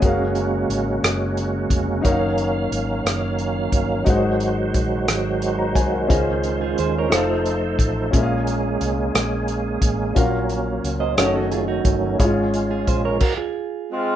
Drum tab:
CC |------|------|------|------|
HH |xxxxxx|xxxxxx|xxxxxx|xxxxxx|
SD |---r--|---r--|---r--|---r--|
BD |o----o|o----o|o-o--o|o----o|

CC |------|------|---x--|
HH |xxxxxx|xxxxxx|xxx---|
SD |---r--|---r--|------|
BD |o----o|o----o|o-oo--|